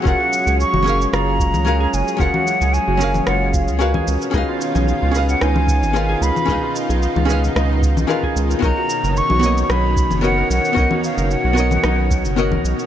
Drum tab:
SH |x-xxx-xxx-xxx-xx|x-xxx-xxx-xxx-xx|x-xxx-xxx-xxx-xx|x-xxx-xxx-xxx-xx|
SD |--------r-------|--------r-------|--------r-------|--------r-------|
CG |-----O-----O----|-O-----O-----O--|---O-----O-----O|-----O-----O----|
BD |o---------o-----|o---------o--o--|o---------o-----|o---------o--o--|

SH |x-xxx-xxx-xxx-xx|x-xxx-xxx-xxx-xx|
SD |--------r-------|--------r-------|
CG |-----O-----O----|-O-----O-----O--|
BD |o---------o-----|o---------o--o--|